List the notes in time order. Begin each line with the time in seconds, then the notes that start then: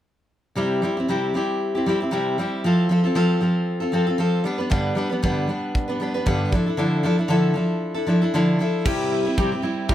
0.55 C3 G3 C4 E4 G4
0.82 G3 C4 E4 G4
0.97 C4 E4 G4
1.08 C3 G3 C4 E4 G4
1.34 G3 C4 E4 G4
1.75 C4 E4 G4
1.86 G3 C4 E4 G4
2.00 C4 E4 G4
2.11 C3 G3 C4 E4 G4
2.38 G3 C4 E4 G4
2.64 F3 C4 F4 A4
2.89 F3 C4 F4 A4
3.04 C4 F4 A4
3.15 F3 C4 F4 A4
3.41 F3 C4 F4 A4
3.80 C4 F4 A4
3.92 F3 C4 F4 A4
4.07 C4 F4 A4
4.18 F3 C4 F4 A4
4.44 G3 B3 D4 B4
4.58 G3 B3 D4 B4
4.70 G2 D3 G3 B3 D4 B4, kick
4.95 G3 B3 D4 B4
5.09 G3 B3 D4 B4
5.22 G2 D3 G3 B3 D4 B4, kick
5.47 G3 B3 D4 B4
5.75 kick
5.88 G3 B3 D4 B4
6.00 G3 B3 D4 B4
6.14 G3 B3 D4 B4
6.26 G2 D3 G3 B3 D4 B4, kick
6.52 F3 D4 E4 A4, kick
6.66 D4 E4 A4
6.77 D3 F3 D4 E4 A4
7.03 F3 D4 E4 A4
7.18 D4 E4 A4
7.28 D3 F3 D4 E4 A4
7.54 F3 D4 E4 A4
7.94 D4 E4 A4
8.07 F3 D4 E4 A4
8.22 D4 E4 A4
8.34 D3 F3 D4 E4 A4
8.59 F3 D4 E4 A4
8.85 C3 G3 C4 E4 G4, kick, crash
9.12 E4
9.25 C4 E4 G4
9.38 C3 G3 C4 E4 G4, kick
9.52 C4 E4 G4
9.62 G3 C4 E4 G4
9.89 C3 G3 C4 E4 G4, kick